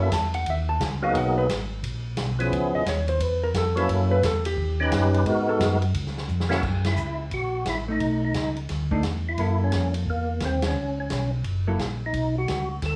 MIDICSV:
0, 0, Header, 1, 5, 480
1, 0, Start_track
1, 0, Tempo, 343249
1, 1605, Time_signature, 4, 2, 24, 8
1, 18120, End_track
2, 0, Start_track
2, 0, Title_t, "Hollow-body jazz guitar"
2, 0, Program_c, 0, 26
2, 40, Note_on_c, 0, 76, 79
2, 178, Note_off_c, 0, 76, 0
2, 186, Note_on_c, 0, 81, 91
2, 472, Note_off_c, 0, 81, 0
2, 485, Note_on_c, 0, 78, 91
2, 646, Note_off_c, 0, 78, 0
2, 699, Note_on_c, 0, 76, 78
2, 963, Note_on_c, 0, 81, 103
2, 970, Note_off_c, 0, 76, 0
2, 1165, Note_off_c, 0, 81, 0
2, 1165, Note_on_c, 0, 80, 93
2, 1440, Note_off_c, 0, 80, 0
2, 1446, Note_on_c, 0, 77, 81
2, 1607, Note_off_c, 0, 77, 0
2, 1639, Note_on_c, 0, 78, 100
2, 1919, Note_off_c, 0, 78, 0
2, 1924, Note_on_c, 0, 71, 101
2, 2024, Note_off_c, 0, 71, 0
2, 3845, Note_on_c, 0, 75, 103
2, 4007, Note_off_c, 0, 75, 0
2, 4033, Note_on_c, 0, 73, 79
2, 4315, Note_off_c, 0, 73, 0
2, 4321, Note_on_c, 0, 72, 95
2, 4507, Note_off_c, 0, 72, 0
2, 4507, Note_on_c, 0, 71, 86
2, 4793, Note_off_c, 0, 71, 0
2, 4805, Note_on_c, 0, 70, 89
2, 4967, Note_off_c, 0, 70, 0
2, 5003, Note_on_c, 0, 69, 85
2, 5274, Note_off_c, 0, 69, 0
2, 5274, Note_on_c, 0, 71, 91
2, 5479, Note_off_c, 0, 71, 0
2, 5479, Note_on_c, 0, 70, 94
2, 5748, Note_off_c, 0, 70, 0
2, 5753, Note_on_c, 0, 71, 110
2, 5921, Note_off_c, 0, 71, 0
2, 5950, Note_on_c, 0, 69, 68
2, 6233, Note_off_c, 0, 69, 0
2, 6238, Note_on_c, 0, 67, 90
2, 7311, Note_off_c, 0, 67, 0
2, 7681, Note_on_c, 0, 69, 93
2, 7843, Note_off_c, 0, 69, 0
2, 7872, Note_on_c, 0, 68, 76
2, 8047, Note_off_c, 0, 68, 0
2, 11026, Note_on_c, 0, 57, 57
2, 11049, Note_on_c, 0, 63, 58
2, 11646, Note_off_c, 0, 57, 0
2, 11658, Note_off_c, 0, 63, 0
2, 12465, Note_on_c, 0, 57, 69
2, 12476, Note_on_c, 0, 62, 67
2, 12481, Note_on_c, 0, 63, 70
2, 12624, Note_off_c, 0, 57, 0
2, 12629, Note_off_c, 0, 62, 0
2, 12631, Note_off_c, 0, 63, 0
2, 13129, Note_on_c, 0, 58, 54
2, 13140, Note_on_c, 0, 64, 55
2, 13146, Note_on_c, 0, 69, 51
2, 14463, Note_off_c, 0, 58, 0
2, 14468, Note_off_c, 0, 64, 0
2, 14471, Note_off_c, 0, 69, 0
2, 16323, Note_on_c, 0, 54, 49
2, 16326, Note_on_c, 0, 58, 52
2, 16329, Note_on_c, 0, 64, 56
2, 16332, Note_on_c, 0, 69, 54
2, 16474, Note_off_c, 0, 54, 0
2, 16475, Note_off_c, 0, 58, 0
2, 16477, Note_off_c, 0, 64, 0
2, 16478, Note_off_c, 0, 69, 0
2, 18120, End_track
3, 0, Start_track
3, 0, Title_t, "Tonewheel organ"
3, 0, Program_c, 1, 16
3, 0, Note_on_c, 1, 64, 64
3, 0, Note_on_c, 1, 69, 78
3, 142, Note_off_c, 1, 64, 0
3, 143, Note_off_c, 1, 69, 0
3, 1425, Note_on_c, 1, 54, 78
3, 1430, Note_on_c, 1, 58, 69
3, 1434, Note_on_c, 1, 59, 77
3, 1444, Note_on_c, 1, 68, 79
3, 1445, Note_on_c, 1, 63, 77
3, 2047, Note_off_c, 1, 54, 0
3, 2050, Note_off_c, 1, 58, 0
3, 2052, Note_off_c, 1, 59, 0
3, 2057, Note_off_c, 1, 63, 0
3, 2057, Note_off_c, 1, 68, 0
3, 3339, Note_on_c, 1, 59, 57
3, 3340, Note_on_c, 1, 53, 69
3, 3354, Note_on_c, 1, 61, 60
3, 3355, Note_on_c, 1, 64, 60
3, 3370, Note_on_c, 1, 68, 76
3, 3964, Note_off_c, 1, 59, 0
3, 3965, Note_off_c, 1, 53, 0
3, 3972, Note_off_c, 1, 61, 0
3, 3972, Note_off_c, 1, 64, 0
3, 3980, Note_off_c, 1, 68, 0
3, 5253, Note_on_c, 1, 54, 72
3, 5260, Note_on_c, 1, 58, 59
3, 5263, Note_on_c, 1, 61, 66
3, 5274, Note_on_c, 1, 64, 63
3, 5284, Note_on_c, 1, 69, 70
3, 5881, Note_off_c, 1, 54, 0
3, 5884, Note_off_c, 1, 58, 0
3, 5886, Note_off_c, 1, 61, 0
3, 5891, Note_off_c, 1, 64, 0
3, 5896, Note_off_c, 1, 69, 0
3, 6713, Note_on_c, 1, 67, 85
3, 6715, Note_on_c, 1, 61, 71
3, 6720, Note_on_c, 1, 63, 73
3, 6741, Note_on_c, 1, 71, 97
3, 7330, Note_off_c, 1, 67, 0
3, 7331, Note_off_c, 1, 61, 0
3, 7333, Note_off_c, 1, 63, 0
3, 7334, Note_on_c, 1, 56, 89
3, 7344, Note_off_c, 1, 71, 0
3, 7345, Note_on_c, 1, 59, 75
3, 7356, Note_on_c, 1, 63, 78
3, 7357, Note_on_c, 1, 66, 77
3, 7370, Note_on_c, 1, 70, 89
3, 8073, Note_off_c, 1, 56, 0
3, 8078, Note_off_c, 1, 59, 0
3, 8084, Note_off_c, 1, 63, 0
3, 8084, Note_off_c, 1, 66, 0
3, 8091, Note_off_c, 1, 70, 0
3, 9081, Note_on_c, 1, 58, 82
3, 9088, Note_on_c, 1, 61, 69
3, 9101, Note_on_c, 1, 64, 70
3, 9110, Note_on_c, 1, 66, 66
3, 9119, Note_on_c, 1, 69, 89
3, 9251, Note_off_c, 1, 58, 0
3, 9254, Note_off_c, 1, 61, 0
3, 9261, Note_off_c, 1, 64, 0
3, 9266, Note_off_c, 1, 66, 0
3, 9270, Note_off_c, 1, 69, 0
3, 9604, Note_on_c, 1, 64, 82
3, 10043, Note_off_c, 1, 64, 0
3, 10263, Note_on_c, 1, 66, 90
3, 10699, Note_off_c, 1, 66, 0
3, 10753, Note_on_c, 1, 64, 83
3, 10884, Note_off_c, 1, 64, 0
3, 11075, Note_on_c, 1, 63, 80
3, 11500, Note_off_c, 1, 63, 0
3, 11531, Note_on_c, 1, 63, 75
3, 11967, Note_off_c, 1, 63, 0
3, 12986, Note_on_c, 1, 64, 91
3, 13462, Note_off_c, 1, 64, 0
3, 13476, Note_on_c, 1, 61, 79
3, 13901, Note_off_c, 1, 61, 0
3, 14124, Note_on_c, 1, 58, 87
3, 14598, Note_off_c, 1, 58, 0
3, 14617, Note_on_c, 1, 60, 81
3, 14905, Note_off_c, 1, 60, 0
3, 14918, Note_on_c, 1, 61, 80
3, 15368, Note_off_c, 1, 61, 0
3, 15385, Note_on_c, 1, 61, 66
3, 15816, Note_off_c, 1, 61, 0
3, 16864, Note_on_c, 1, 63, 86
3, 17278, Note_off_c, 1, 63, 0
3, 17313, Note_on_c, 1, 66, 73
3, 17741, Note_off_c, 1, 66, 0
3, 17978, Note_on_c, 1, 69, 82
3, 18120, Note_off_c, 1, 69, 0
3, 18120, End_track
4, 0, Start_track
4, 0, Title_t, "Tonewheel organ"
4, 0, Program_c, 2, 16
4, 0, Note_on_c, 2, 42, 81
4, 146, Note_off_c, 2, 42, 0
4, 159, Note_on_c, 2, 40, 86
4, 627, Note_off_c, 2, 40, 0
4, 634, Note_on_c, 2, 39, 81
4, 1105, Note_off_c, 2, 39, 0
4, 1119, Note_on_c, 2, 37, 86
4, 1588, Note_off_c, 2, 37, 0
4, 1595, Note_on_c, 2, 35, 84
4, 2066, Note_off_c, 2, 35, 0
4, 2081, Note_on_c, 2, 32, 83
4, 2549, Note_off_c, 2, 32, 0
4, 2554, Note_on_c, 2, 34, 76
4, 3025, Note_off_c, 2, 34, 0
4, 3033, Note_on_c, 2, 35, 85
4, 3505, Note_off_c, 2, 35, 0
4, 3513, Note_on_c, 2, 37, 81
4, 3801, Note_off_c, 2, 37, 0
4, 3818, Note_on_c, 2, 37, 38
4, 3908, Note_off_c, 2, 37, 0
4, 3995, Note_on_c, 2, 39, 86
4, 4466, Note_off_c, 2, 39, 0
4, 4471, Note_on_c, 2, 40, 86
4, 4943, Note_off_c, 2, 40, 0
4, 4955, Note_on_c, 2, 41, 91
4, 5425, Note_off_c, 2, 41, 0
4, 5435, Note_on_c, 2, 42, 88
4, 5905, Note_off_c, 2, 42, 0
4, 5910, Note_on_c, 2, 40, 90
4, 6382, Note_off_c, 2, 40, 0
4, 6392, Note_on_c, 2, 39, 81
4, 6863, Note_off_c, 2, 39, 0
4, 6871, Note_on_c, 2, 42, 96
4, 7342, Note_off_c, 2, 42, 0
4, 7348, Note_on_c, 2, 44, 93
4, 7820, Note_off_c, 2, 44, 0
4, 7827, Note_on_c, 2, 42, 88
4, 8300, Note_off_c, 2, 42, 0
4, 8306, Note_on_c, 2, 37, 85
4, 8779, Note_off_c, 2, 37, 0
4, 8780, Note_on_c, 2, 41, 89
4, 9256, Note_off_c, 2, 41, 0
4, 9271, Note_on_c, 2, 42, 65
4, 9742, Note_off_c, 2, 42, 0
4, 9743, Note_on_c, 2, 37, 79
4, 10218, Note_off_c, 2, 37, 0
4, 10229, Note_on_c, 2, 34, 73
4, 10701, Note_off_c, 2, 34, 0
4, 10707, Note_on_c, 2, 33, 77
4, 11180, Note_off_c, 2, 33, 0
4, 11187, Note_on_c, 2, 35, 74
4, 11660, Note_off_c, 2, 35, 0
4, 11671, Note_on_c, 2, 37, 79
4, 12142, Note_off_c, 2, 37, 0
4, 12150, Note_on_c, 2, 38, 77
4, 12622, Note_off_c, 2, 38, 0
4, 12631, Note_on_c, 2, 40, 86
4, 13102, Note_off_c, 2, 40, 0
4, 13114, Note_on_c, 2, 42, 72
4, 13584, Note_off_c, 2, 42, 0
4, 13592, Note_on_c, 2, 41, 77
4, 14064, Note_off_c, 2, 41, 0
4, 14068, Note_on_c, 2, 40, 75
4, 14541, Note_off_c, 2, 40, 0
4, 14557, Note_on_c, 2, 39, 83
4, 15027, Note_off_c, 2, 39, 0
4, 15027, Note_on_c, 2, 37, 70
4, 15502, Note_off_c, 2, 37, 0
4, 15525, Note_on_c, 2, 35, 83
4, 15991, Note_off_c, 2, 35, 0
4, 16002, Note_on_c, 2, 30, 75
4, 16469, Note_off_c, 2, 30, 0
4, 16489, Note_on_c, 2, 34, 78
4, 16954, Note_off_c, 2, 34, 0
4, 16962, Note_on_c, 2, 35, 73
4, 17430, Note_off_c, 2, 35, 0
4, 17446, Note_on_c, 2, 37, 82
4, 17912, Note_off_c, 2, 37, 0
4, 17930, Note_on_c, 2, 38, 72
4, 18120, Note_off_c, 2, 38, 0
4, 18120, End_track
5, 0, Start_track
5, 0, Title_t, "Drums"
5, 162, Note_on_c, 9, 36, 21
5, 165, Note_on_c, 9, 44, 66
5, 165, Note_on_c, 9, 51, 76
5, 167, Note_on_c, 9, 38, 76
5, 302, Note_off_c, 9, 36, 0
5, 305, Note_off_c, 9, 44, 0
5, 305, Note_off_c, 9, 51, 0
5, 307, Note_off_c, 9, 38, 0
5, 474, Note_on_c, 9, 51, 51
5, 614, Note_off_c, 9, 51, 0
5, 642, Note_on_c, 9, 36, 21
5, 645, Note_on_c, 9, 51, 65
5, 782, Note_off_c, 9, 36, 0
5, 784, Note_off_c, 9, 51, 0
5, 1122, Note_on_c, 9, 36, 24
5, 1123, Note_on_c, 9, 44, 63
5, 1123, Note_on_c, 9, 51, 66
5, 1124, Note_on_c, 9, 38, 79
5, 1262, Note_off_c, 9, 36, 0
5, 1263, Note_off_c, 9, 44, 0
5, 1263, Note_off_c, 9, 51, 0
5, 1264, Note_off_c, 9, 38, 0
5, 1602, Note_on_c, 9, 36, 25
5, 1603, Note_on_c, 9, 51, 70
5, 1742, Note_off_c, 9, 36, 0
5, 1743, Note_off_c, 9, 51, 0
5, 2083, Note_on_c, 9, 36, 23
5, 2088, Note_on_c, 9, 44, 57
5, 2088, Note_on_c, 9, 51, 73
5, 2089, Note_on_c, 9, 38, 72
5, 2222, Note_off_c, 9, 36, 0
5, 2227, Note_off_c, 9, 44, 0
5, 2227, Note_off_c, 9, 51, 0
5, 2229, Note_off_c, 9, 38, 0
5, 2561, Note_on_c, 9, 36, 20
5, 2566, Note_on_c, 9, 51, 68
5, 2701, Note_off_c, 9, 36, 0
5, 2706, Note_off_c, 9, 51, 0
5, 3031, Note_on_c, 9, 44, 61
5, 3031, Note_on_c, 9, 51, 71
5, 3032, Note_on_c, 9, 38, 73
5, 3039, Note_on_c, 9, 36, 22
5, 3171, Note_off_c, 9, 44, 0
5, 3171, Note_off_c, 9, 51, 0
5, 3172, Note_off_c, 9, 38, 0
5, 3178, Note_off_c, 9, 36, 0
5, 3353, Note_on_c, 9, 51, 50
5, 3493, Note_off_c, 9, 51, 0
5, 3522, Note_on_c, 9, 36, 25
5, 3533, Note_on_c, 9, 51, 64
5, 3662, Note_off_c, 9, 36, 0
5, 3673, Note_off_c, 9, 51, 0
5, 4000, Note_on_c, 9, 36, 21
5, 4004, Note_on_c, 9, 44, 58
5, 4004, Note_on_c, 9, 51, 72
5, 4005, Note_on_c, 9, 38, 71
5, 4140, Note_off_c, 9, 36, 0
5, 4144, Note_off_c, 9, 44, 0
5, 4144, Note_off_c, 9, 51, 0
5, 4145, Note_off_c, 9, 38, 0
5, 4305, Note_on_c, 9, 51, 50
5, 4445, Note_off_c, 9, 51, 0
5, 4478, Note_on_c, 9, 36, 23
5, 4481, Note_on_c, 9, 51, 79
5, 4618, Note_off_c, 9, 36, 0
5, 4621, Note_off_c, 9, 51, 0
5, 4957, Note_on_c, 9, 44, 59
5, 4957, Note_on_c, 9, 51, 71
5, 4959, Note_on_c, 9, 38, 74
5, 4960, Note_on_c, 9, 36, 25
5, 5097, Note_off_c, 9, 44, 0
5, 5097, Note_off_c, 9, 51, 0
5, 5098, Note_off_c, 9, 38, 0
5, 5100, Note_off_c, 9, 36, 0
5, 5272, Note_on_c, 9, 51, 55
5, 5411, Note_off_c, 9, 51, 0
5, 5438, Note_on_c, 9, 36, 23
5, 5441, Note_on_c, 9, 51, 66
5, 5578, Note_off_c, 9, 36, 0
5, 5581, Note_off_c, 9, 51, 0
5, 5918, Note_on_c, 9, 36, 28
5, 5918, Note_on_c, 9, 44, 61
5, 5918, Note_on_c, 9, 51, 77
5, 5920, Note_on_c, 9, 38, 82
5, 6058, Note_off_c, 9, 36, 0
5, 6058, Note_off_c, 9, 44, 0
5, 6058, Note_off_c, 9, 51, 0
5, 6060, Note_off_c, 9, 38, 0
5, 6223, Note_on_c, 9, 51, 77
5, 6363, Note_off_c, 9, 51, 0
5, 6396, Note_on_c, 9, 36, 28
5, 6536, Note_off_c, 9, 36, 0
5, 6874, Note_on_c, 9, 36, 25
5, 6876, Note_on_c, 9, 44, 54
5, 6876, Note_on_c, 9, 51, 77
5, 6877, Note_on_c, 9, 38, 78
5, 7014, Note_off_c, 9, 36, 0
5, 7016, Note_off_c, 9, 44, 0
5, 7016, Note_off_c, 9, 51, 0
5, 7017, Note_off_c, 9, 38, 0
5, 7193, Note_on_c, 9, 51, 48
5, 7333, Note_off_c, 9, 51, 0
5, 7352, Note_on_c, 9, 36, 21
5, 7355, Note_on_c, 9, 51, 62
5, 7492, Note_off_c, 9, 36, 0
5, 7495, Note_off_c, 9, 51, 0
5, 7835, Note_on_c, 9, 36, 18
5, 7839, Note_on_c, 9, 44, 71
5, 7839, Note_on_c, 9, 51, 76
5, 7841, Note_on_c, 9, 38, 84
5, 7974, Note_off_c, 9, 36, 0
5, 7979, Note_off_c, 9, 44, 0
5, 7979, Note_off_c, 9, 51, 0
5, 7981, Note_off_c, 9, 38, 0
5, 8139, Note_on_c, 9, 51, 53
5, 8279, Note_off_c, 9, 51, 0
5, 8313, Note_on_c, 9, 36, 28
5, 8315, Note_on_c, 9, 51, 75
5, 8453, Note_off_c, 9, 36, 0
5, 8455, Note_off_c, 9, 51, 0
5, 8484, Note_on_c, 9, 38, 32
5, 8624, Note_off_c, 9, 38, 0
5, 8638, Note_on_c, 9, 38, 50
5, 8778, Note_off_c, 9, 38, 0
5, 8787, Note_on_c, 9, 44, 60
5, 8927, Note_off_c, 9, 44, 0
5, 8955, Note_on_c, 9, 38, 68
5, 9095, Note_off_c, 9, 38, 0
5, 9102, Note_on_c, 9, 38, 91
5, 9242, Note_off_c, 9, 38, 0
5, 9272, Note_on_c, 9, 49, 63
5, 9273, Note_on_c, 9, 36, 63
5, 9411, Note_off_c, 9, 49, 0
5, 9413, Note_off_c, 9, 36, 0
5, 9574, Note_on_c, 9, 51, 61
5, 9575, Note_on_c, 9, 38, 72
5, 9714, Note_off_c, 9, 51, 0
5, 9715, Note_off_c, 9, 38, 0
5, 9737, Note_on_c, 9, 44, 61
5, 9877, Note_off_c, 9, 44, 0
5, 10226, Note_on_c, 9, 51, 58
5, 10235, Note_on_c, 9, 36, 23
5, 10366, Note_off_c, 9, 51, 0
5, 10375, Note_off_c, 9, 36, 0
5, 10707, Note_on_c, 9, 44, 50
5, 10707, Note_on_c, 9, 51, 62
5, 10709, Note_on_c, 9, 38, 63
5, 10715, Note_on_c, 9, 36, 23
5, 10847, Note_off_c, 9, 44, 0
5, 10847, Note_off_c, 9, 51, 0
5, 10848, Note_off_c, 9, 38, 0
5, 10854, Note_off_c, 9, 36, 0
5, 11192, Note_on_c, 9, 51, 54
5, 11195, Note_on_c, 9, 36, 21
5, 11331, Note_off_c, 9, 51, 0
5, 11335, Note_off_c, 9, 36, 0
5, 11667, Note_on_c, 9, 44, 50
5, 11667, Note_on_c, 9, 51, 66
5, 11668, Note_on_c, 9, 38, 65
5, 11674, Note_on_c, 9, 36, 22
5, 11806, Note_off_c, 9, 44, 0
5, 11806, Note_off_c, 9, 51, 0
5, 11808, Note_off_c, 9, 38, 0
5, 11814, Note_off_c, 9, 36, 0
5, 11976, Note_on_c, 9, 51, 41
5, 12116, Note_off_c, 9, 51, 0
5, 12149, Note_on_c, 9, 51, 57
5, 12150, Note_on_c, 9, 38, 34
5, 12154, Note_on_c, 9, 36, 19
5, 12289, Note_off_c, 9, 51, 0
5, 12290, Note_off_c, 9, 38, 0
5, 12294, Note_off_c, 9, 36, 0
5, 12461, Note_on_c, 9, 36, 52
5, 12601, Note_off_c, 9, 36, 0
5, 12627, Note_on_c, 9, 44, 58
5, 12627, Note_on_c, 9, 51, 62
5, 12628, Note_on_c, 9, 38, 56
5, 12635, Note_on_c, 9, 36, 22
5, 12767, Note_off_c, 9, 44, 0
5, 12767, Note_off_c, 9, 51, 0
5, 12768, Note_off_c, 9, 38, 0
5, 12775, Note_off_c, 9, 36, 0
5, 13112, Note_on_c, 9, 51, 52
5, 13114, Note_on_c, 9, 36, 16
5, 13252, Note_off_c, 9, 51, 0
5, 13254, Note_off_c, 9, 36, 0
5, 13591, Note_on_c, 9, 44, 56
5, 13591, Note_on_c, 9, 51, 65
5, 13592, Note_on_c, 9, 38, 61
5, 13595, Note_on_c, 9, 36, 21
5, 13731, Note_off_c, 9, 44, 0
5, 13731, Note_off_c, 9, 51, 0
5, 13732, Note_off_c, 9, 38, 0
5, 13735, Note_off_c, 9, 36, 0
5, 13902, Note_on_c, 9, 51, 64
5, 14041, Note_off_c, 9, 51, 0
5, 14077, Note_on_c, 9, 36, 22
5, 14216, Note_off_c, 9, 36, 0
5, 14549, Note_on_c, 9, 44, 57
5, 14549, Note_on_c, 9, 51, 58
5, 14550, Note_on_c, 9, 38, 59
5, 14556, Note_on_c, 9, 36, 18
5, 14688, Note_off_c, 9, 44, 0
5, 14688, Note_off_c, 9, 51, 0
5, 14690, Note_off_c, 9, 38, 0
5, 14696, Note_off_c, 9, 36, 0
5, 14855, Note_on_c, 9, 51, 61
5, 14856, Note_on_c, 9, 38, 79
5, 14994, Note_off_c, 9, 51, 0
5, 14996, Note_off_c, 9, 38, 0
5, 15523, Note_on_c, 9, 44, 62
5, 15523, Note_on_c, 9, 51, 64
5, 15524, Note_on_c, 9, 36, 25
5, 15524, Note_on_c, 9, 38, 61
5, 15662, Note_off_c, 9, 44, 0
5, 15662, Note_off_c, 9, 51, 0
5, 15663, Note_off_c, 9, 36, 0
5, 15664, Note_off_c, 9, 38, 0
5, 16001, Note_on_c, 9, 51, 59
5, 16006, Note_on_c, 9, 36, 25
5, 16141, Note_off_c, 9, 51, 0
5, 16146, Note_off_c, 9, 36, 0
5, 16489, Note_on_c, 9, 36, 18
5, 16490, Note_on_c, 9, 44, 58
5, 16490, Note_on_c, 9, 51, 57
5, 16491, Note_on_c, 9, 38, 65
5, 16629, Note_off_c, 9, 36, 0
5, 16630, Note_off_c, 9, 44, 0
5, 16630, Note_off_c, 9, 51, 0
5, 16631, Note_off_c, 9, 38, 0
5, 16969, Note_on_c, 9, 51, 57
5, 16971, Note_on_c, 9, 36, 23
5, 17108, Note_off_c, 9, 51, 0
5, 17111, Note_off_c, 9, 36, 0
5, 17451, Note_on_c, 9, 36, 17
5, 17452, Note_on_c, 9, 44, 50
5, 17452, Note_on_c, 9, 51, 58
5, 17454, Note_on_c, 9, 38, 62
5, 17591, Note_off_c, 9, 36, 0
5, 17592, Note_off_c, 9, 44, 0
5, 17592, Note_off_c, 9, 51, 0
5, 17594, Note_off_c, 9, 38, 0
5, 17928, Note_on_c, 9, 51, 60
5, 17929, Note_on_c, 9, 38, 38
5, 17932, Note_on_c, 9, 36, 21
5, 18067, Note_off_c, 9, 51, 0
5, 18069, Note_off_c, 9, 38, 0
5, 18071, Note_off_c, 9, 36, 0
5, 18120, End_track
0, 0, End_of_file